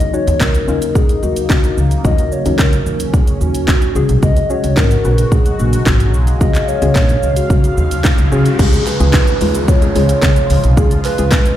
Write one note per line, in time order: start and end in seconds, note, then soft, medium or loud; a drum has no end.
0.00 8.55 C#3 medium
0.00 3.91 F#3 medium
0.00 3.91 A#3 medium
0.00 2.02 D#4 medium
0.00 0.15 D#5 loud
0.00 closed hi-hat medium
0.00 shaker medium
0.13 0.55 C#4 medium
0.13 0.55 D#4 medium
0.13 0.55 F#4 medium
0.13 0.42 C#5 loud
0.13 shaker medium
0.27 0.36 D#2 loud
0.27 closed hi-hat medium
0.27 shaker medium
0.40 0.58 C#2 loud
0.40 0.97 A#4 loud
0.40 kick loud
0.40 snare medium
0.40 clap loud
0.40 shaker medium
0.55 closed hi-hat medium
0.55 shaker medium
0.68 0.85 D#2 medium
0.68 1.50 C#4 medium
0.68 1.51 D#4 medium
0.68 1.51 F4 medium
0.68 shaker medium
0.82 closed hi-hat medium
0.82 shaker medium
0.95 1.25 G#4 medium
0.95 kick loud
0.95 shaker medium
1.09 closed hi-hat soft
1.09 shaker soft
1.23 1.39 D#2 medium
1.23 1.77 F#4 medium
1.23 shaker medium
1.36 closed hi-hat medium
1.36 shaker medium
1.49 1.67 C#2 medium
1.49 kick loud
1.49 snare medium
1.49 clap loud
1.49 shaker medium
1.64 closed hi-hat soft
1.64 shaker soft
1.77 1.94 C#2 medium
1.77 shaker medium
1.91 closed hi-hat medium
1.91 shaker medium
2.04 2.21 D#2 loud
2.04 2.35 C#4 medium
2.04 3.94 C#4 medium
2.04 2.36 D#4 medium
2.04 2.36 F#4 medium
2.04 2.34 D#5 loud
2.04 kick loud
2.04 shaker medium
2.18 closed hi-hat medium
2.18 shaker medium
2.32 2.61 C#5 loud
2.32 shaker medium
2.45 2.54 D#2 medium
2.45 3.28 C#4 medium
2.45 3.28 D#4 medium
2.45 3.28 F#4 medium
2.45 closed hi-hat medium
2.45 shaker medium
2.58 2.76 C#2 loud
2.58 3.16 A#4 loud
2.58 kick loud
2.58 snare medium
2.58 clap loud
2.58 shaker medium
2.73 closed hi-hat medium
2.73 shaker medium
2.86 3.03 D#2 medium
2.86 shaker medium
3.00 closed hi-hat medium
3.00 shaker medium
3.14 3.40 G#4 loud
3.14 kick loud
3.14 shaker medium
3.27 closed hi-hat soft
3.27 shaker soft
3.41 3.57 D#2 medium
3.41 3.92 F#4 medium
3.41 shaker medium
3.55 closed hi-hat medium
3.55 shaker medium
3.68 3.76 D#3 loud
3.68 kick loud
3.68 snare medium
3.68 clap loud
3.68 shaker medium
3.82 closed hi-hat soft
3.82 shaker soft
3.95 4.04 C#2 medium
3.95 8.55 F#3 medium
3.95 8.55 G#3 medium
3.95 4.39 C#4 medium
3.95 4.39 F#4 medium
3.95 6.12 F#4 medium
3.95 4.39 G#4 medium
3.95 shaker medium
4.09 4.17 B1 loud
4.09 closed hi-hat medium
4.09 shaker medium
4.23 4.39 C#2 loud
4.23 4.51 D#5 loud
4.23 kick loud
4.23 shaker medium
4.37 closed hi-hat medium
4.37 shaker medium
4.50 4.91 C#4 medium
4.50 4.91 F#4 medium
4.50 4.92 G#4 medium
4.50 4.78 C#5 loud
4.50 shaker medium
4.64 4.72 C#2 medium
4.64 closed hi-hat medium
4.64 shaker medium
4.76 4.94 G#1 medium
4.76 5.33 A#4 loud
4.76 kick loud
4.76 snare medium
4.76 clap loud
4.76 shaker medium
4.91 closed hi-hat medium
4.91 shaker medium
5.05 5.21 A#1 medium
5.05 5.87 C#4 medium
5.05 5.87 F#4 medium
5.05 5.87 B4 medium
5.05 shaker medium
5.18 closed hi-hat medium
5.18 shaker medium
5.32 5.60 G#4 medium
5.32 kick loud
5.32 shaker medium
5.46 closed hi-hat soft
5.46 shaker soft
5.59 5.76 A#1 medium
5.59 6.14 F#4 medium
5.59 shaker medium
5.73 closed hi-hat medium
5.73 shaker medium
5.86 6.14 G#1 medium
5.86 kick loud
5.86 snare medium
5.86 clap loud
5.86 shaker medium
6.00 closed hi-hat soft
6.00 shaker soft
6.14 6.30 B1 medium
6.14 8.57 F5 medium
6.14 shaker medium
6.27 closed hi-hat medium
6.27 shaker medium
6.41 6.58 C#2 loud
6.41 6.72 C#4 medium
6.41 6.72 F#4 medium
6.41 6.72 G#4 medium
6.41 6.70 D#5 loud
6.41 kick loud
6.41 riser medium
6.41 shaker medium
6.55 clap medium
6.55 closed hi-hat medium
6.55 shaker medium
6.68 7.38 C#5 loud
6.68 shaker medium
6.82 6.90 C#2 loud
6.82 7.64 C#4 medium
6.82 7.64 F#4 medium
6.82 7.65 G#4 medium
6.82 closed hi-hat medium
6.82 shaker medium
6.95 7.12 A#1 medium
6.95 kick loud
6.95 snare medium
6.95 clap loud
6.95 shaker medium
7.09 closed hi-hat medium
7.09 shaker soft
7.23 7.39 C#2 medium
7.23 shaker medium
7.36 8.32 F#4 medium
7.36 closed hi-hat medium
7.36 shaker medium
7.50 7.67 C#3 loud
7.50 kick loud
7.50 shaker medium
7.64 closed hi-hat soft
7.64 shaker soft
7.77 7.94 D#2 medium
7.77 shaker medium
7.91 closed hi-hat medium
7.91 shaker medium
8.04 muted upright bass stroke soft
8.04 kick loud
8.04 snare medium
8.04 clap loud
8.04 shaker medium
8.18 8.27 C#2 loud
8.18 closed hi-hat soft
8.18 shaker soft
8.32 8.48 C#3 medium
8.32 8.52 C#4 medium
8.32 8.53 F#4 medium
8.32 8.53 G#4 loud
8.32 shaker medium
8.46 closed hi-hat medium
8.46 shaker medium
8.59 8.76 C#2 loud
8.59 11.57 C#3 medium
8.59 11.57 F3 medium
8.59 8.90 G#3 medium
8.59 11.57 G#3 medium
8.59 8.90 C#4 medium
8.59 11.57 F4 medium
8.59 8.90 F4 medium
8.59 8.84 G#4 medium
8.59 8.90 G#4 medium
8.59 kick loud
8.59 crash loud
8.59 downlifter medium
8.59 shaker medium
8.73 closed hi-hat medium
8.73 shaker medium
8.86 9.70 B4 loud
8.86 clap medium
8.86 open hi-hat medium
8.86 shaker medium
9.00 9.17 C#2 loud
9.00 9.31 G#3 medium
9.00 9.31 C#4 medium
9.00 9.31 F4 medium
9.00 9.31 G#4 medium
9.00 closed hi-hat medium
9.00 shaker medium
9.13 kick loud
9.13 snare medium
9.13 clap loud
9.13 clap medium
9.13 shaker medium
9.27 closed hi-hat medium
9.27 shaker medium
9.41 9.58 D#2 medium
9.41 9.72 G#3 medium
9.41 9.72 C#4 medium
9.41 9.72 F4 medium
9.41 9.72 B4 medium
9.41 open hi-hat medium
9.41 shaker medium
9.55 closed hi-hat medium
9.55 shaker medium
9.68 10.09 C#5 loud
9.68 kick loud
9.68 shaker medium
9.82 9.92 G#3 medium
9.82 9.92 C#4 medium
9.82 9.92 F4 medium
9.82 9.92 G#4 medium
9.82 closed hi-hat medium
9.82 shaker soft
9.95 10.12 C#2 loud
9.95 10.57 G#3 medium
9.95 10.57 C#4 medium
9.95 10.58 F4 medium
9.95 10.58 G#4 medium
9.95 open hi-hat medium
9.95 shaker medium
10.09 10.47 C#5 loud
10.09 closed hi-hat medium
10.09 shaker medium
10.22 10.31 C#3 loud
10.22 kick loud
10.22 snare medium
10.22 clap loud
10.22 clap medium
10.22 shaker medium
10.36 closed hi-hat soft
10.36 shaker soft
10.50 10.58 C#2 loud
10.50 open hi-hat medium
10.50 shaker medium
10.64 10.77 B1 medium
10.64 closed hi-hat medium
10.64 shaker medium
10.77 10.94 C#2 loud
10.77 11.08 G#3 medium
10.77 11.08 C#4 medium
10.77 11.08 F4 medium
10.77 10.90 G#4 medium
10.77 11.09 G#4 medium
10.77 kick loud
10.77 shaker medium
10.91 closed hi-hat medium
10.91 shaker medium
11.05 11.57 B4 loud
11.05 clap medium
11.05 open hi-hat medium
11.05 shaker medium
11.18 11.35 C#2 medium
11.18 11.49 G#3 medium
11.18 11.49 C#4 medium
11.18 11.49 F4 medium
11.18 11.49 G#4 medium
11.18 closed hi-hat medium
11.18 shaker medium
11.31 kick loud
11.31 snare medium
11.31 clap medium
11.31 clap loud
11.31 shaker medium
11.46 closed hi-hat medium
11.46 shaker medium